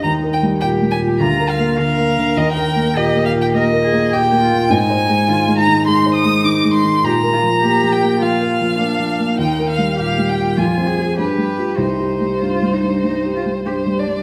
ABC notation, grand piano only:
X:1
M:4/4
L:1/8
Q:1/4=102
K:Eb
V:1 name="Grand piano" clef=bass
(3E,, B G, (3B,, G, B,, (3D,, B B, (3D, B, D, | (3E,, B B, (3B,, B, B,, (3B, B B, (3B,, B, B,, | (3A,, c A, (3E, A, E, (3A, c A, (3E, A, E, | (3B,, B F, (3B, F, B, (3F, B F, (3B, F, B, |
(3E,, B G, (3B,, G, B,, (3F,, C [FA] (3G,, G, [FG] | (3C,, G G, (3G,, G, G,, (3G, G G, (3G,, G, G,, |]